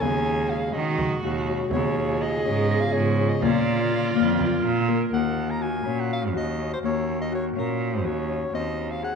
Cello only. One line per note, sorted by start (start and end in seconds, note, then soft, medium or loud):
0.03 0.68 D#2 medium
0.75 1.19 D#3 medium
1.24 1.67 D#2 medium
1.72 2.38 D#2 medium
2.45 2.89 G#2 loud
2.95 3.38 G#2 medium
3.43 4.08 A#2 medium
4.16 4.59 F2 medium
4.64 5.08 A#2 medium
5.13 5.78 D#2 medium
5.86 6.36 A#2 medium
6.34 6.78 D#2 medium
6.83 7.49 D#2 medium
7.56 8.06 A#2 medium
8.05 8.49 D#2 medium
8.54 9.15 D#2 medium